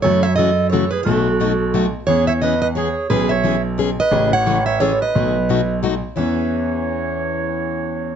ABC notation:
X:1
M:3/4
L:1/16
Q:"Swing" 1/4=176
K:E
V:1 name="Steel-string acoustic guitar"
c2 e2 d4 c2 B2 | A8- A2 z2 | c2 e2 d2 d2 c4 | B2 e4 z4 d2- |
d2 f4 e2 c2 d2- | d8 z4 | e12- | e12 |]
V:2 name="Clarinet"
A2 c2 A4 A2 G2 | F8- F2 z2 | G2 c2 B2 B2 G4 | G2 c4 z4 B2- |
B2 c4 c2 A2 B2- | B8 z4 | c12- | c12 |]
V:3 name="Steel-string acoustic guitar"
[C,E,A,CF]2 z2 [C,E,A,CF] z3 [C,E,A,CF] z3 | [B,,F,A,DF]2 z2 [B,,F,A,DF] z3 [B,,F,A,DF] z3 | [E,B,CG]2 z2 [E,B,CG] z3 [E,B,CG] z3 | [E,B,CG]2 z2 [E,B,CG] z3 [E,B,CG] z3 |
[C,E,A,CG]2 z2 [C,E,A,CG] z3 [C,E,A,CG] z3 | [B,,F,A,DF]2 z2 [B,,F,A,DF] z3 [B,,F,A,DF] z3 | [E,B,CG]12- | [E,B,CG]12 |]
V:4 name="Grand piano" clef=bass
F,,12 | B,,,12 | E,,12 | B,,,12 |
A,,,12 | B,,,12 | E,,12- | E,,12 |]